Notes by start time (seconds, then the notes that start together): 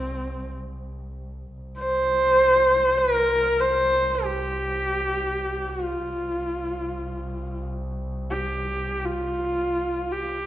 Already playing: C2 C4
1.54 C2
1.79 C5
2.97 A#4
3.60 C5
4.24 G4
5.68 F4
6.04 C2
8.31 G4
9.05 F4
10.12 G4